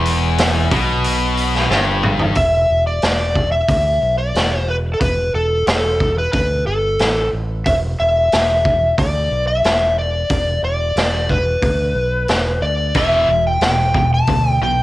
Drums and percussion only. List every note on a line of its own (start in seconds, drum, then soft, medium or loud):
0.06 open hi-hat medium
0.38 snare loud
0.38 open hi-hat medium
0.71 kick loud
0.71 open hi-hat medium
1.04 open hi-hat medium
1.37 open hi-hat medium
1.55 snare soft
1.71 snare medium
2.03 mid tom medium
2.19 floor tom medium
2.35 kick medium
2.35 open hi-hat soft
3.02 snare loud
3.02 open hi-hat soft
3.35 kick medium
3.68 kick medium
3.68 open hi-hat soft
4.35 snare medium
4.35 open hi-hat soft
5.01 kick loud
5.01 open hi-hat soft
5.67 snare loud
5.67 open hi-hat soft
6.00 kick medium
6.33 kick loud
6.33 open hi-hat soft
6.99 snare medium
6.99 open hi-hat soft
7.66 kick loud
7.66 open hi-hat soft
8.32 snare loud
8.32 open hi-hat soft
8.65 kick medium
8.98 kick medium
8.98 open hi-hat soft
9.64 snare medium
9.64 open hi-hat soft
10.30 kick loud
10.30 open hi-hat medium
10.97 snare loud
10.97 open hi-hat soft
11.29 kick medium
11.62 kick medium
11.62 open hi-hat soft
12.28 snare medium
12.28 open hi-hat soft
12.94 kick loud
12.94 open hi-hat soft
13.61 snare loud
13.61 open hi-hat soft
13.94 kick medium
14.27 kick medium
14.27 open hi-hat soft